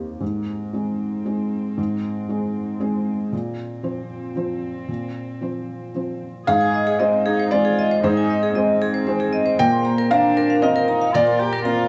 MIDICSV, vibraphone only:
0, 0, Header, 1, 2, 480
1, 0, Start_track
1, 0, Tempo, 518583
1, 193, Time_signature, 3, 2, 24, 8
1, 4030, Tempo, 527704
1, 6910, Tempo, 516351
1, 10965, End_track
2, 0, Start_track
2, 0, Title_t, "Vibraphone"
2, 0, Program_c, 0, 11
2, 5965, Note_on_c, 0, 68, 81
2, 6034, Note_off_c, 0, 68, 0
2, 6080, Note_on_c, 0, 80, 60
2, 6151, Note_off_c, 0, 80, 0
2, 6202, Note_on_c, 0, 75, 59
2, 6272, Note_off_c, 0, 75, 0
2, 6318, Note_on_c, 0, 68, 82
2, 6389, Note_off_c, 0, 68, 0
2, 6435, Note_on_c, 0, 75, 60
2, 6506, Note_off_c, 0, 75, 0
2, 6671, Note_on_c, 0, 68, 95
2, 6743, Note_off_c, 0, 68, 0
2, 6796, Note_on_c, 0, 72, 67
2, 6866, Note_off_c, 0, 72, 0
2, 6911, Note_on_c, 0, 72, 58
2, 6983, Note_off_c, 0, 72, 0
2, 7030, Note_on_c, 0, 68, 75
2, 7103, Note_off_c, 0, 68, 0
2, 7158, Note_on_c, 0, 75, 62
2, 7228, Note_off_c, 0, 75, 0
2, 7276, Note_on_c, 0, 72, 65
2, 7347, Note_off_c, 0, 72, 0
2, 7396, Note_on_c, 0, 68, 78
2, 7467, Note_off_c, 0, 68, 0
2, 7517, Note_on_c, 0, 80, 63
2, 7587, Note_off_c, 0, 80, 0
2, 7637, Note_on_c, 0, 75, 52
2, 7707, Note_off_c, 0, 75, 0
2, 7756, Note_on_c, 0, 68, 89
2, 7826, Note_off_c, 0, 68, 0
2, 7870, Note_on_c, 0, 75, 73
2, 7942, Note_off_c, 0, 75, 0
2, 8114, Note_on_c, 0, 68, 89
2, 8185, Note_off_c, 0, 68, 0
2, 8230, Note_on_c, 0, 72, 69
2, 8303, Note_off_c, 0, 72, 0
2, 8350, Note_on_c, 0, 72, 60
2, 8423, Note_off_c, 0, 72, 0
2, 8472, Note_on_c, 0, 68, 82
2, 8545, Note_off_c, 0, 68, 0
2, 8590, Note_on_c, 0, 75, 70
2, 8663, Note_off_c, 0, 75, 0
2, 8711, Note_on_c, 0, 72, 69
2, 8785, Note_off_c, 0, 72, 0
2, 8835, Note_on_c, 0, 70, 93
2, 8908, Note_off_c, 0, 70, 0
2, 8953, Note_on_c, 0, 84, 70
2, 9026, Note_off_c, 0, 84, 0
2, 9075, Note_on_c, 0, 82, 65
2, 9148, Note_off_c, 0, 82, 0
2, 9201, Note_on_c, 0, 70, 91
2, 9272, Note_off_c, 0, 70, 0
2, 9320, Note_on_c, 0, 82, 82
2, 9391, Note_off_c, 0, 82, 0
2, 9561, Note_on_c, 0, 70, 113
2, 9632, Note_off_c, 0, 70, 0
2, 9680, Note_on_c, 0, 77, 70
2, 9751, Note_off_c, 0, 77, 0
2, 9806, Note_on_c, 0, 77, 70
2, 9875, Note_off_c, 0, 77, 0
2, 9919, Note_on_c, 0, 70, 99
2, 9990, Note_off_c, 0, 70, 0
2, 10036, Note_on_c, 0, 82, 76
2, 10108, Note_off_c, 0, 82, 0
2, 10159, Note_on_c, 0, 77, 74
2, 10230, Note_off_c, 0, 77, 0
2, 10279, Note_on_c, 0, 70, 109
2, 10350, Note_off_c, 0, 70, 0
2, 10397, Note_on_c, 0, 84, 71
2, 10468, Note_off_c, 0, 84, 0
2, 10515, Note_on_c, 0, 82, 73
2, 10586, Note_off_c, 0, 82, 0
2, 10635, Note_on_c, 0, 70, 107
2, 10706, Note_off_c, 0, 70, 0
2, 10752, Note_on_c, 0, 82, 78
2, 10823, Note_off_c, 0, 82, 0
2, 10965, End_track
0, 0, End_of_file